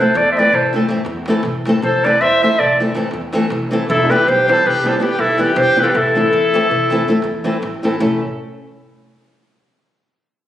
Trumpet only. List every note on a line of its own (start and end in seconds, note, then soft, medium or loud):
0.00 0.16 A4 medium
0.16 0.31 A4 medium
0.31 0.40 C5 medium
0.38 0.56 B4 medium
0.55 0.74 A4 medium
1.83 2.06 A4 medium
2.05 2.23 B4 medium
2.22 2.43 C5 medium
2.44 2.61 C5 medium
2.59 2.79 A4 medium
3.89 4.12 E4 medium
4.11 4.29 G4 medium
4.29 4.50 G4 medium
4.51 4.69 A4 loud
4.67 4.89 G4 loud
4.87 4.97 A4 medium
4.97 5.04 A4 medium
5.03 5.21 G4 medium
5.20 5.40 E4 medium
5.43 5.59 G4 medium
5.59 5.80 G4 loud
5.80 5.89 F4 medium
5.80 5.84 G4 medium
5.88 5.89 G4 medium
5.88 5.97 G4 medium
5.96 7.62 E4 medium